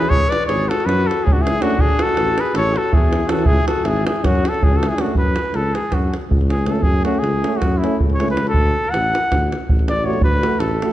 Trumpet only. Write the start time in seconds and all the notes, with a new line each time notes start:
Already playing: B4
0.09 C#5
0.30 D5
0.47 C#5
0.69 A4
0.86 B4
1.07 A4
1.24 G#4
1.33 F#4
1.42 G#4
1.62 F#4
1.81 G#4
2.02 A4
2.40 B4
2.57 C#5
2.78 A4
2.94 G#4
3.30 A4
3.46 G#4
3.68 A4
3.88 G#4
4.07 G#4
4.25 F#4
4.48 A4
4.64 G#4
4.77 A4
4.89 G#4
5.01 F#4
5.18 B4
5.56 A4
5.74 G#4
5.94 F#4
6.50 G#4
6.67 A4
6.83 G#4
7.05 F#4
7.19 G#4
7.57 F#4
7.78 E4
8.15 C#5
8.31 B4
8.49 A4
8.90 F#5
9.90 D5
10.06 C#5
10.24 B4
10.60 A4